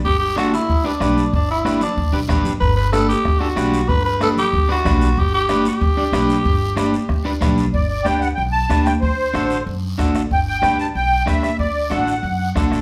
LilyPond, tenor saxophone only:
\new Staff \with { instrumentName = "Tenor saxophone" } { \time 4/4 \key g \major \tempo 4 = 187 g'8 g'8 fis'8 e'4 d'4. | d'8 e'4 d'4 r4. | b'8 b'8 a'8 g'4 fis'4. | b'8 b'8 a'8 g'4 fis'4. |
g'8 g'4 g'2~ g'8~ | g'2. r4 | r1 | r1 |
r1 | r1 | }